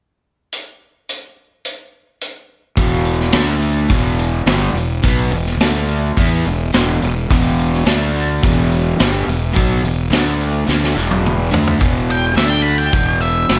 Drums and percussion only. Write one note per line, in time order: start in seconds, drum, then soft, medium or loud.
0.53 closed hi-hat medium
1.09 closed hi-hat medium
1.65 closed hi-hat medium
2.21 closed hi-hat medium
2.77 kick loud
2.77 open hi-hat medium
3.05 open hi-hat medium
3.20 snare soft
3.33 snare loud
3.33 open hi-hat medium
3.62 open hi-hat medium
3.90 kick loud
3.90 open hi-hat medium
4.19 open hi-hat medium
4.47 snare loud
4.47 open hi-hat medium
4.77 open hi-hat medium
5.04 kick loud
5.04 open hi-hat medium
5.32 open hi-hat medium
5.46 snare soft
5.60 snare loud
5.60 open hi-hat medium
5.88 open hi-hat medium
6.17 kick loud
6.17 open hi-hat medium
6.46 open hi-hat medium
6.74 snare loud
6.74 open hi-hat medium
7.02 open hi-hat medium
7.31 kick loud
7.31 open hi-hat medium
7.59 open hi-hat medium
7.73 snare soft
7.86 snare loud
7.86 open hi-hat medium
8.15 open hi-hat medium
8.43 kick loud
8.43 open hi-hat medium
8.72 open hi-hat medium
9.00 snare loud
9.00 open hi-hat medium
9.29 open hi-hat medium
9.56 kick loud
9.56 open hi-hat medium
9.84 open hi-hat medium
10.13 snare loud
10.13 open hi-hat medium
10.41 open hi-hat medium
10.69 snare medium
10.84 snare medium
11.11 high tom medium
11.26 mid tom medium
11.54 floor tom loud
11.67 floor tom medium
11.81 kick loud
11.81 open hi-hat medium
12.10 open hi-hat medium
12.37 snare loud
12.37 open hi-hat medium
12.66 open hi-hat medium
12.93 kick loud
12.93 open hi-hat medium
13.22 open hi-hat medium
13.49 snare loud
13.49 open hi-hat medium